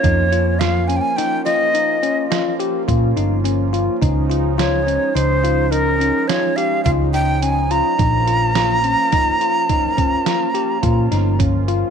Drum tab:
HH |xxxxxxxxxxxxxx|xxxxxxxxxxxxxx|xxxxxxxxxxxxxx|
SD |--o-oo--o-----|--o-----o-----|--o-o---o--o--|
BD |o---------o---|o---------o---|o---o-oo--o-o-|